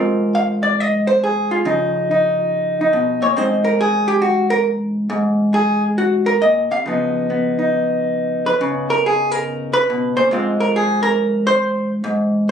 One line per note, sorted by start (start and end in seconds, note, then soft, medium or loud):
0.00 1.65 G#2 medium
0.00 1.64 C4 soft
0.00 1.51 F4 soft
0.00 1.07 A#4 soft
0.35 0.62 F5 medium
0.63 0.80 D5 medium
0.80 1.09 D#5 medium
1.07 1.23 C5 medium
1.24 1.52 G#4 medium
1.51 2.51 F4 medium
1.65 2.93 C#3 medium
1.65 3.40 F3 soft
1.65 2.11 D#4 soft
2.11 2.81 D#4 soft
2.81 3.38 D#4 soft
2.93 3.21 B2 medium
3.22 3.36 A#2 medium
3.22 3.38 C#5 medium
3.36 5.08 G#2 medium
3.36 5.09 C4 soft
3.36 5.81 D#4 soft
3.36 3.65 C5 medium
3.64 3.80 A#4 medium
3.81 4.09 G#4 medium
4.08 4.21 G4 medium
4.22 4.50 F#4 medium
4.50 4.66 A#4 loud
5.10 6.42 G#2 medium
5.54 5.83 G#4 medium
5.81 5.97 F4 medium
5.98 6.27 F#4 medium
6.26 6.42 A#4 medium
6.42 6.71 A#2 soft
6.42 6.71 D#5 medium
6.71 6.85 C3 medium
6.71 7.74 F5 medium
6.86 8.59 C#3 medium
6.86 8.60 F3 soft
6.86 7.30 B3 soft
6.86 7.58 D#4 soft
7.30 10.32 B3 soft
7.59 10.32 D#4 soft
8.46 8.90 B4 medium
8.61 10.32 C#3 medium
8.90 9.05 A#4 medium
9.06 9.32 G#4 medium
9.32 9.73 A#4 medium
9.73 10.16 B4 medium
9.90 10.16 B2 medium
10.17 10.31 A#2 medium
10.17 10.60 C5 medium
10.31 12.03 G#2 medium
10.31 12.02 G#3 soft
10.31 12.51 C4 soft
10.31 12.51 F4 medium
10.60 10.75 A#4 medium
10.76 11.02 G#4 medium
11.03 11.46 A#4 loud
11.47 11.89 C5 medium
12.04 12.51 G#2 medium